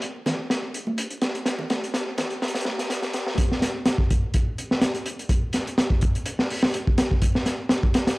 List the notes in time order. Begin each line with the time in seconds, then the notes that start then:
0.02 closed hi-hat
0.26 snare, closed hi-hat, low conga
0.50 snare, closed hi-hat
0.74 closed hi-hat
0.87 high conga
0.98 closed hi-hat
1.10 closed hi-hat
1.22 snare, closed hi-hat
1.35 closed hi-hat
1.46 snare, closed hi-hat
1.59 low conga
1.70 snare, closed hi-hat, high conga
1.84 closed hi-hat
1.94 snare, closed hi-hat
2.18 snare, closed hi-hat, low conga
2.30 closed hi-hat
2.42 snare, closed hi-hat
2.48 closed hi-hat
2.55 snare, closed hi-hat
2.60 closed hi-hat
2.65 snare, high conga
2.79 snare, closed hi-hat
2.90 snare, closed hi-hat
3.02 snare, closed hi-hat
3.13 snare, closed hi-hat
3.27 snare
3.38 kick, closed hi-hat
3.52 snare
3.62 snare, closed hi-hat
3.86 snare, closed hi-hat
3.98 kick
4.10 kick, closed hi-hat
4.34 kick, closed hi-hat
4.58 closed hi-hat
4.71 snare
4.82 snare, closed hi-hat
4.95 closed hi-hat
5.06 closed hi-hat
5.19 closed hi-hat
5.29 kick, closed hi-hat
5.53 snare, closed hi-hat
5.67 closed hi-hat
5.78 snare, closed hi-hat
5.90 kick
6.01 kick, closed hi-hat
6.15 closed hi-hat
6.26 closed hi-hat
6.39 snare
6.50 open hi-hat
6.63 snare
6.74 closed hi-hat
6.87 kick
6.98 snare, closed hi-hat
7.11 kick
7.22 kick, closed hi-hat
7.35 snare
7.46 snare, closed hi-hat
7.69 snare, closed hi-hat
7.83 kick
7.94 snare, closed hi-hat
8.07 snare, closed hi-hat